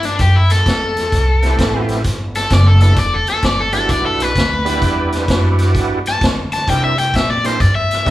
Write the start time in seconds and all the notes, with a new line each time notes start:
Already playing: G2
0.03 D4, snare, closed hi-hat
0.19 F#2 G4, kick, snare, closed hi-hat
0.36 E4
0.50 A4, snare, closed hi-hat
0.66 E2, kick, snare, closed hi-hat
0.97 snare, closed hi-hat
1.12 C2, kick, snare, closed hi-hat
1.42 A3 B3 C4 E4 G4, snare, closed hi-hat
1.59 A1, kick, snare, closed hi-hat
1.89 snare, closed hi-hat
2.04 G1, kick, snare, closed hi-hat
2.35 A4, snare, closed hi-hat
2.50 F#1 D5, kick, snare, closed hi-hat
2.67 A4
2.81 G3 B3 D4 E4 A4, snare, closed hi-hat
2.96 E1 D5, kick, snare, closed hi-hat
3.14 A4
3.27 A4, muted upright bass stroke, snare, closed hi-hat
3.42 G1 D5, kick, snare, closed hi-hat
3.61 A4
3.73 G3 B3 D4 E4 F#4 A4, snare, closed hi-hat
3.89 B1 D5, kick, snare, closed hi-hat
4.06 A4
4.20 B4, snare, closed hi-hat
4.36 D2, kick, snare, closed hi-hat
4.65 G3 B3 D4 E4 G4, snare, closed hi-hat
4.82 E2, kick, snare, closed hi-hat
5.12 snare, closed hi-hat
5.28 F#2 B3 D4 E4 F#4 G4, kick, snare, closed hi-hat
5.59 snare, closed hi-hat
5.75 G2, kick, snare, closed hi-hat
6.06 A5, snare, closed hi-hat
6.21 D3, kick, snare, closed hi-hat
6.52 A5, snare, closed hi-hat
6.68 C3 G3 C4 D4 E4 A#4 G5, kick, snare, closed hi-hat
6.84 E5
6.98 G5, snare, closed hi-hat
7.14 A#2 E5, kick, snare, closed hi-hat
7.30 D5
7.44 G3 C4 D4 E4 A#4 C5, snare, closed hi-hat
7.60 G2 D5, kick, snare, closed hi-hat
7.75 E5
7.91 snare, closed hi-hat
8.05 C2 G3 C4 D4 E4 A#4, kick, closed hi-hat